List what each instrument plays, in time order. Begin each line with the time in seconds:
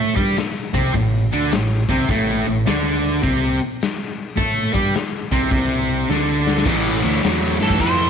Already playing: fingered electric bass A2, distorted electric guitar A3 A4
0.16 fingered electric bass G2, distorted electric guitar G3 G4, kick
0.37 muted distorted electric guitar stroke, muted fingered electric bass stroke, snare, open hi-hat
0.73 fingered electric bass C2, distorted electric guitar C3 C4, kick
0.94 fingered electric bass A1, distorted electric guitar A2, kick, open hi-hat
1.32 fingered electric bass D2, distorted electric guitar D3 D4
1.51 fingered electric bass A1, distorted electric guitar A2, snare, open hi-hat
1.89 fingered electric bass C2, distorted electric guitar C3 C4, kick
2.09 fingered electric bass A1, distorted electric guitar A2 A3, kick, open hi-hat
2.47 fingered electric bass A1, distorted electric guitar A2
2.66 fingered electric bass D2, distorted electric guitar D3 D4, snare, open hi-hat
3.23 fingered electric bass C2, distorted electric guitar C3 C4, kick, open hi-hat
3.81 snare, open hi-hat
4.36 fingered electric bass A2, distorted electric guitar A3 A4, kick, open hi-hat
4.74 fingered electric bass G2, distorted electric guitar G3 G4, kick
4.94 muted distorted electric guitar stroke, muted fingered electric bass stroke, snare, open hi-hat
5.32 fingered electric bass C2, distorted electric guitar C3 C4, kick
5.51 fingered electric bass C2, distorted electric guitar C3 C4, kick, open hi-hat
6.10 fingered electric bass D2, distorted electric guitar D3 D4, snare
6.47 snare
6.58 snare
6.65 fingered electric bass A1, distorted electric guitar A2 E3, kick, crash
7.01 fingered electric bass D2, distorted electric guitar A2 E3, crash
7.23 fingered electric bass E2, distorted electric guitar A2 F#3, snare, crash
7.60 fingered electric bass G2, distorted electric guitar A2 E3, lead electric guitar A4, crash
7.70 kick
7.80 fingered electric bass F2, distorted electric guitar A2 E3, lead electric guitar C5, kick, crash